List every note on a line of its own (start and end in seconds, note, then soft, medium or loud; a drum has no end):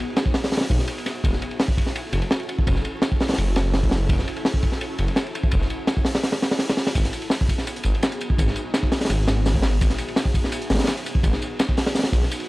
0.00 1.19 B3 medium
0.00 1.19 D#4 medium
0.00 6.91 F#4 medium
0.00 1.19 G#4 loud
0.17 snare loud
0.17 ride medium
0.26 kick loud
0.34 snare loud
0.34 open hi-hat medium
0.44 snare loud
0.44 open hi-hat medium
0.52 snare medium
0.52 open hi-hat medium
0.57 snare loud
0.57 open hi-hat medium
0.61 snare loud
0.61 open hi-hat medium
0.70 0.78 B1 loud
0.70 kick medium
0.70 ride medium
0.79 snare soft
0.87 ride medium
0.98 ride soft
1.06 snare soft
1.06 ride medium
1.24 1.32 F#1 loud
1.24 6.91 C#4 medium
1.24 6.91 E4 medium
1.24 6.91 A4 loud
1.24 kick loud
1.24 ride medium
1.33 snare soft
1.42 ride medium
1.51 ride soft
1.59 snare loud
1.59 open hi-hat medium
1.68 kick loud
1.78 kick loud
1.78 ride medium
1.86 snare medium
1.96 ride medium
2.13 2.21 F#1 medium
2.13 ride medium
2.22 ride soft
2.31 snare loud
2.31 ride medium
2.40 ride soft
2.49 ride medium
2.59 kick loud
2.67 2.75 F#1 loud
2.67 kick loud
2.67 ride loud
2.75 snare soft
2.85 ride medium
3.02 snare loud
3.02 ride medium
3.12 kick loud
3.20 snare loud
3.20 open hi-hat medium
3.28 snare medium
3.28 open hi-hat medium
3.33 snare medium
3.33 open hi-hat medium
3.38 3.64 F#1 medium
3.38 ride medium
3.56 snare loud
3.56 ride medium
3.65 3.90 F#1 medium
3.65 snare soft
3.74 snare loud
3.74 open hi-hat medium
3.83 kick medium
3.91 4.08 F#1 medium
3.91 snare loud
3.91 open hi-hat medium
4.09 4.18 F#1 loud
4.09 kick loud
4.09 ride loud
4.19 snare soft
4.28 ride medium
4.36 ride soft
4.45 snare loud
4.45 open hi-hat medium
4.54 kick loud
4.63 kick medium
4.63 ride medium
4.72 snare medium
4.81 ride medium
4.98 5.07 F#1 medium
4.98 ride medium
5.08 ride soft
5.16 snare loud
5.16 ride medium
5.26 ride soft
5.35 ride medium
5.43 kick loud
5.51 5.61 F#1 loud
5.51 kick loud
5.51 ride loud
5.61 snare soft
5.70 ride medium
5.87 snare loud
5.87 ride medium
5.97 kick loud
6.05 snare loud
6.05 open hi-hat medium
6.15 snare loud
6.15 open hi-hat medium
6.23 snare loud
6.23 open hi-hat medium
6.32 snare loud
6.32 open hi-hat medium
6.42 snare loud
6.42 open hi-hat medium
6.51 snare loud
6.51 open hi-hat medium
6.59 snare loud
6.59 open hi-hat medium
6.68 snare loud
6.68 open hi-hat medium
6.77 snare loud
6.77 open hi-hat medium
6.87 snare loud
6.87 open hi-hat medium
6.95 7.03 G#1 loud
6.95 12.48 B3 medium
6.95 12.48 D#4 medium
6.95 12.48 F#4 medium
6.95 12.48 G#4 loud
6.95 kick loud
6.95 ride loud
6.95 tambourine medium
7.05 snare soft
7.05 closed hi-hat soft
7.13 ride medium
7.13 tambourine medium
7.22 ride soft
7.30 snare loud
7.30 open hi-hat medium
7.30 tambourine medium
7.41 kick loud
7.49 kick medium
7.49 ride medium
7.49 tambourine medium
7.58 snare soft
7.58 snare medium
7.67 ride medium
7.67 tambourine medium
7.76 closed hi-hat soft
7.83 7.93 G#1 medium
7.83 ride medium
7.83 tambourine medium
7.94 ride soft
8.03 snare loud
8.03 ride medium
8.03 tambourine medium
8.12 closed hi-hat soft
8.12 ride soft
8.21 ride medium
8.21 tambourine medium
8.30 kick medium
8.38 8.46 G#1 loud
8.38 kick loud
8.38 ride loud
8.38 tambourine loud
8.47 snare soft
8.47 snare medium
8.56 ride medium
8.56 tambourine medium
8.74 snare loud
8.74 ride medium
8.74 tambourine loud
8.83 kick medium
8.83 snare medium
8.92 snare loud
8.92 open hi-hat medium
8.92 tambourine medium
9.01 snare medium
9.01 open hi-hat medium
9.05 snare medium
9.05 open hi-hat medium
9.10 9.35 G#1 medium
9.10 ride loud
9.10 tambourine medium
9.28 snare loud
9.28 ride medium
9.28 tambourine medium
9.37 9.62 G#1 medium
9.37 snare soft
9.46 snare medium
9.46 open hi-hat medium
9.46 tambourine medium
9.55 kick medium
9.62 9.79 G#1 medium
9.62 snare loud
9.62 open hi-hat medium
9.62 tambourine medium
9.81 9.89 G#1 loud
9.81 kick loud
9.81 ride medium
9.81 tambourine loud
9.90 snare medium
9.90 closed hi-hat soft
9.98 ride medium
9.98 tambourine medium
10.08 ride soft
10.16 snare loud
10.16 open hi-hat medium
10.16 tambourine medium
10.25 kick loud
10.34 kick loud
10.34 ride medium
10.34 tambourine medium
10.44 snare medium
10.52 ride medium
10.52 tambourine medium
10.62 closed hi-hat soft
10.70 10.78 G#1 medium
10.70 snare loud
10.70 open hi-hat medium
10.70 tambourine medium
10.75 snare medium
10.75 open hi-hat medium
10.78 snare medium
10.78 open hi-hat medium
10.83 snare medium
10.83 open hi-hat medium
10.83 ride medium
10.88 snare loud
10.88 tambourine medium
10.97 closed hi-hat soft
10.97 ride soft
11.06 ride medium
11.06 tambourine medium
11.15 kick loud
11.23 11.32 G#1 loud
11.23 kick loud
11.23 ride medium
11.23 tambourine medium
11.33 snare soft
11.33 snare medium
11.42 ride medium
11.42 tambourine medium
11.59 snare loud
11.59 ride medium
11.59 tambourine medium
11.69 kick loud
11.69 snare medium
11.77 snare loud
11.77 open hi-hat medium
11.77 tambourine medium
11.86 snare loud
11.86 open hi-hat medium
11.95 snare medium
11.95 open hi-hat medium
11.95 tambourine medium
11.99 snare medium
11.99 open hi-hat medium
12.03 snare loud
12.03 open hi-hat medium
12.12 12.21 B1 loud
12.12 kick medium
12.12 ride medium
12.12 tambourine medium
12.23 snare soft
12.31 ride medium
12.31 tambourine medium
12.40 ride soft